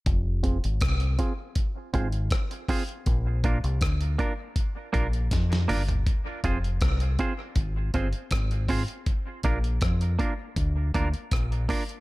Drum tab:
HH |x-xxxxx-x-xxxxox|x-xxxxx-x-xxxxox|x-xxxxx-x-xxxxox|x-xxxxx-x-xxxxox|
SD |----r-------r---|----r-------oo--|----r-------r---|----r-------r---|
T2 |----------------|--------------o-|----------------|----------------|
FT |----------------|---------------o|----------------|----------------|
BD |o-o-o-o-o-o-o-o-|o-o-o-o-o-o-o---|o-o-o-o-o-o-o-o-|o-o-o-o-o-o-o-o-|